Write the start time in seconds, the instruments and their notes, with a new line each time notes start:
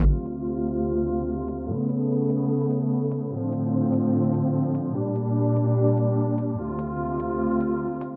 0.05 string section D2 C3 F4, crash
0.26 closed hi-hat
0.67 closed hi-hat
0.98 closed hi-hat
1.08 closed hi-hat
1.48 closed hi-hat
1.69 string section C#3 A3 B3
1.89 closed hi-hat
2.30 closed hi-hat
2.61 closed hi-hat
2.71 closed hi-hat
3.12 closed hi-hat
3.32 string section A2 D3 F3 C4
3.52 closed hi-hat
3.93 closed hi-hat
4.24 closed hi-hat
4.34 closed hi-hat
4.75 closed hi-hat
4.95 string section A#2 G3 D4
5.16 closed hi-hat
5.56 closed hi-hat
5.87 closed hi-hat
5.97 closed hi-hat
6.38 closed hi-hat
6.58 string section D2 C3 F4
6.79 closed hi-hat
7.20 closed hi-hat
7.51 closed hi-hat
7.61 closed hi-hat
8.01 closed hi-hat